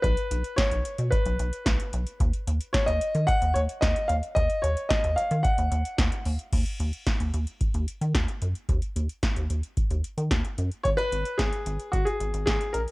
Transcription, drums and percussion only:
0.04 kick, closed hi-hat
0.17 closed hi-hat
0.31 closed hi-hat
0.44 closed hi-hat
0.58 kick, snare, closed hi-hat
0.71 closed hi-hat
0.85 closed hi-hat
0.98 closed hi-hat
1.12 kick, closed hi-hat
1.25 closed hi-hat
1.39 closed hi-hat
1.53 closed hi-hat
1.66 kick, snare, closed hi-hat
1.80 closed hi-hat
1.93 closed hi-hat
2.07 closed hi-hat
2.20 kick, closed hi-hat
2.33 closed hi-hat
2.47 closed hi-hat
2.61 closed hi-hat
2.74 kick, snare, closed hi-hat
2.88 closed hi-hat
3.01 closed hi-hat
3.15 closed hi-hat
3.28 kick, closed hi-hat
3.42 closed hi-hat
3.56 closed hi-hat
3.69 closed hi-hat
3.82 kick, snare, closed hi-hat
3.96 closed hi-hat
4.09 closed hi-hat
4.23 closed hi-hat
4.36 kick, closed hi-hat
4.50 closed hi-hat
4.64 closed hi-hat
4.77 closed hi-hat
4.90 kick, snare, closed hi-hat
5.04 closed hi-hat
5.18 closed hi-hat
5.31 closed hi-hat
5.45 kick, closed hi-hat
5.58 closed hi-hat
5.72 closed hi-hat
5.85 closed hi-hat
5.98 kick, snare, closed hi-hat
6.12 closed hi-hat
6.25 open hi-hat
6.39 closed hi-hat
6.53 kick, closed hi-hat, crash
6.66 closed hi-hat
6.80 closed hi-hat
6.93 closed hi-hat
7.07 kick, snare, closed hi-hat
7.20 closed hi-hat
7.34 closed hi-hat
7.47 closed hi-hat
7.61 kick, closed hi-hat
7.74 closed hi-hat
7.88 closed hi-hat
8.02 closed hi-hat
8.15 kick, snare, closed hi-hat
8.28 closed hi-hat
8.42 closed hi-hat
8.55 closed hi-hat
8.69 kick, closed hi-hat
8.82 closed hi-hat
8.96 closed hi-hat
9.09 closed hi-hat
9.23 kick, snare, closed hi-hat
9.36 closed hi-hat
9.50 closed hi-hat
9.63 closed hi-hat
9.77 kick, closed hi-hat
9.90 closed hi-hat
10.04 closed hi-hat
10.18 closed hi-hat
10.31 kick, snare, closed hi-hat
10.45 closed hi-hat
10.58 closed hi-hat
10.71 closed hi-hat
10.85 kick, closed hi-hat
10.98 closed hi-hat
11.12 closed hi-hat
11.25 closed hi-hat
11.39 kick, snare, closed hi-hat
11.52 closed hi-hat
11.66 closed hi-hat
11.79 closed hi-hat
11.93 kick, closed hi-hat
12.07 closed hi-hat
12.20 closed hi-hat
12.34 closed hi-hat
12.47 kick, snare, closed hi-hat
12.61 closed hi-hat
12.74 closed hi-hat
12.88 closed hi-hat

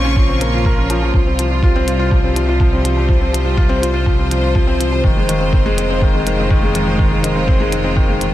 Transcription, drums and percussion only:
0.16 kick
0.41 closed hi-hat
0.65 kick
0.90 closed hi-hat
1.14 kick
1.39 closed hi-hat
1.63 kick
1.88 closed hi-hat
2.11 kick
2.36 closed hi-hat
2.60 kick
2.85 closed hi-hat
3.09 kick
3.34 closed hi-hat
3.58 kick
3.83 closed hi-hat
4.06 kick
4.31 closed hi-hat
4.55 kick
4.81 closed hi-hat
5.04 kick
5.29 closed hi-hat
5.53 kick
5.78 closed hi-hat
6.02 kick
6.27 closed hi-hat
6.50 kick
6.75 closed hi-hat
6.99 kick
7.24 closed hi-hat
7.48 kick
7.72 closed hi-hat
7.97 kick
8.21 closed hi-hat

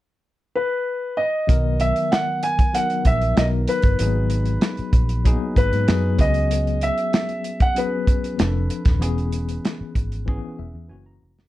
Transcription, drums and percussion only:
1.49 kick, closed hi-hat
1.80 closed hi-hat
1.96 closed hi-hat
2.12 snare, closed hi-hat
2.43 closed hi-hat
2.59 kick, closed hi-hat
2.75 closed hi-hat
2.90 closed hi-hat
3.05 kick, closed hi-hat
3.22 closed hi-hat
3.37 snare, closed hi-hat
3.68 closed hi-hat
3.82 kick, closed hi-hat
3.99 closed hi-hat
4.30 closed hi-hat
4.45 closed hi-hat
4.61 snare, closed hi-hat
4.77 closed hi-hat
4.93 kick, closed hi-hat
5.09 closed hi-hat
5.25 kick, closed hi-hat
5.56 kick, closed hi-hat
5.73 closed hi-hat
5.88 snare, closed hi-hat
6.19 kick, closed hi-hat
6.34 closed hi-hat
6.51 closed hi-hat
6.67 closed hi-hat
6.81 closed hi-hat
6.98 closed hi-hat
7.13 snare, closed hi-hat
7.29 closed hi-hat
7.44 closed hi-hat
7.60 kick, closed hi-hat
7.76 closed hi-hat
8.07 kick, closed hi-hat
8.24 closed hi-hat
8.39 snare, closed hi-hat
8.70 closed hi-hat
8.85 kick, snare, closed hi-hat
9.02 closed hi-hat
9.18 closed hi-hat
9.32 closed hi-hat
9.49 closed hi-hat
9.65 snare, closed hi-hat
9.95 kick, closed hi-hat
10.12 closed hi-hat
10.28 kick
11.39 snare

